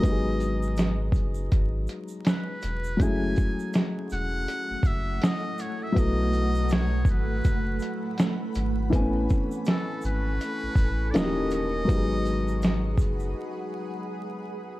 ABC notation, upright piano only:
X:1
M:4/4
L:1/8
Q:"Swing 16ths" 1/4=81
K:G#phr
V:1 name="Upright piano"
[F,G,B,D=G^G]8 | [F,G,A,CEG]8 | [F,A,B,EA]8 | [E,A,B,^B,Cg]6 [E,^A,CDF=G]2 |
[F,G,B,D=G^G]8 |]